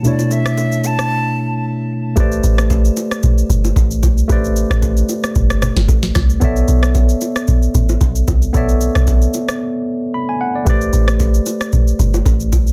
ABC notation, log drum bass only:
X:1
M:4/4
L:1/16
Q:"Swing 16ths" 1/4=113
K:Bphr
V:1 name="Log drum bass" clef=bass
z16 | A,,,2 A,,,4 z4 G,,,2 A,,,2 C,,2 | A,,,3 A,,,3 z2 G,,,3 G,,, A,,,2 C,,2 | B,,,2 B,,,4 z4 A,,,2 B,,,2 C,,2 |
B,,,3 B,,,3 z8 z2 | A,,,2 A,,,4 z4 G,,,2 A,,,2 C,,2 |]